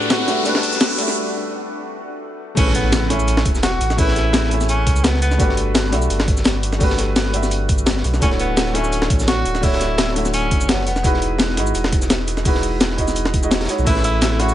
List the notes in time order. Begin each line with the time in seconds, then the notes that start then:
Already playing: G3 A3 D4 F#4 G4 A4 B4 F#5, riser
0.02 cabasa
0.10 F#4, snare, closed hi-hat, cabasa
0.20 snare
0.26 A3 D4 F#4 G4, snare, closed hi-hat
0.30 E5
0.43 A3 D4 F#4 G4, closed hi-hat, cabasa
0.48 B4
0.55 snare
0.63 kick, closed hi-hat
0.73 snare, cabasa
0.80 snare, closed hi-hat, cabasa
0.96 A3 D4 F#4 G4, closed hi-hat
1.01 E5
1.08 snare
2.55 A1 A3 C#4 E4 G#4, kick, closed hi-hat, crash, impact, cabasa
2.60 B4
2.67 snare
2.74 B3, closed hi-hat
2.92 snare, closed hi-hat, cabasa
3.02 snare
3.08 A3 C#4 E4 G#4, snare, closed hi-hat
3.13 E5
3.20 cabasa
3.28 closed hi-hat, cabasa
3.37 snare
3.45 E1, kick, closed hi-hat
3.55 snare, cabasa
3.63 F#4, snare, closed hi-hat, cabasa
3.81 A1, closed hi-hat, cabasa
3.90 snare, cabasa
3.96 A3 C#4 E4 G#4, kick, closed hi-hat, open hi-hat, cabasa
4.01 B4
4.08 snare
4.16 snare, closed hi-hat
4.33 snare, closed hi-hat, cabasa
4.44 snare
4.49 A3 C#4 E4 G#4, closed hi-hat
4.54 E5
4.61 snare, cabasa
4.69 C#4, closed hi-hat, cabasa
4.87 C#2, kick, closed hi-hat
4.96 cabasa
5.04 B3, snare, closed hi-hat, cabasa
5.14 snare
5.22 B3, closed hi-hat, cabasa
5.31 snare, cabasa
5.37 G1 A3 D4 F#4 G4, kick, closed hi-hat, cabasa
5.42 B4
5.49 snare
5.57 closed hi-hat
5.75 snare, closed hi-hat, cabasa
5.84 snare
5.90 B1 A3 D4 F#4 G4, snare, closed hi-hat
5.95 E5
6.02 cabasa
6.10 G1, closed hi-hat, cabasa
6.19 snare
6.28 kick, closed hi-hat
6.37 snare, cabasa
6.44 snare, closed hi-hat, cabasa
6.63 closed hi-hat, cabasa
6.73 snare, cabasa
6.78 A3 D4 F#4 G4, kick, closed hi-hat, open hi-hat, cabasa
6.83 B4
6.90 snare
6.97 snare, closed hi-hat
7.16 snare, closed hi-hat, cabasa
7.25 snare
7.31 A3 D4 F#4 G4, closed hi-hat
7.36 E5
7.43 snare, cabasa
7.51 closed hi-hat, cabasa
7.69 kick, closed hi-hat, cabasa
7.78 cabasa
7.86 G1, snare, closed hi-hat, cabasa
7.97 snare
8.04 B1, closed hi-hat, cabasa
8.14 snare, cabasa
8.20 D1 A3 C#4 D4 E4 F#4, kick, closed hi-hat, cabasa
8.24 C#5
8.31 snare
8.40 B3, closed hi-hat
8.57 snare, closed hi-hat, cabasa
8.66 snare
8.73 D3 A3 C#4 E4 F#4, snare, closed hi-hat
8.77 E5
8.84 cabasa
8.93 closed hi-hat, cabasa
9.01 snare
9.10 A1, kick, closed hi-hat
9.20 snare, cabasa
9.28 F#4, snare, closed hi-hat, cabasa
9.46 D1, closed hi-hat, cabasa
9.55 snare, cabasa
9.61 A3 D4 E4 F#4, kick, closed hi-hat, open hi-hat, cabasa
9.65 C#5
9.72 snare
9.80 snare, closed hi-hat
9.98 snare, closed hi-hat, cabasa
10.08 snare
10.14 D3 A3 E4 F#4, closed hi-hat
10.18 E5
10.25 snare, cabasa
10.34 C#4, closed hi-hat, cabasa
10.51 F#1, kick, closed hi-hat
10.61 cabasa
10.69 B3, snare, closed hi-hat, cabasa
10.79 snare
10.87 E1 B3, closed hi-hat, cabasa
10.96 snare, cabasa
11.02 G#3 D#4 E4 F#4, kick, closed hi-hat, cabasa
11.07 B4
11.14 snare
11.22 closed hi-hat
11.39 snare, closed hi-hat, cabasa
11.49 snare
11.55 G#1 G#3 D#4 E4 F#4, snare, closed hi-hat
11.59 D#5
11.67 cabasa
11.75 E1, closed hi-hat, cabasa
11.84 snare
11.92 kick, closed hi-hat
12.01 snare, cabasa
12.10 snare, closed hi-hat, cabasa
12.27 closed hi-hat, cabasa
12.37 snare, cabasa
12.43 G#3 D#4 E4 F#4, kick, closed hi-hat, open hi-hat, cabasa
12.48 B4
12.55 snare
12.63 closed hi-hat, cabasa
12.80 snare, closed hi-hat, cabasa
12.90 snare
12.96 G#3 D#4 E4 F#4, kick, closed hi-hat
13.01 D#5
13.08 snare, cabasa
13.16 closed hi-hat, cabasa
13.25 snare
13.34 kick, closed hi-hat, cabasa
13.42 G#3 D#4 E4 F#4 D#5, cabasa
13.51 snare, closed hi-hat, cabasa
13.60 snare, closed hi-hat
13.65 G#3 D#4, snare, closed hi-hat
13.69 E4 F#4 C#5, closed hi-hat, cabasa
13.78 B1, cabasa
13.84 A1 A3 C#4 E4 G#4 C#5, kick, closed hi-hat, crash, cabasa
13.89 B4
13.96 snare
14.04 E4, closed hi-hat
14.22 snare, closed hi-hat, cabasa
14.31 snare
14.37 A3 C#4 E4 F#4 G#4, snare, closed hi-hat
14.42 E5
14.49 cabasa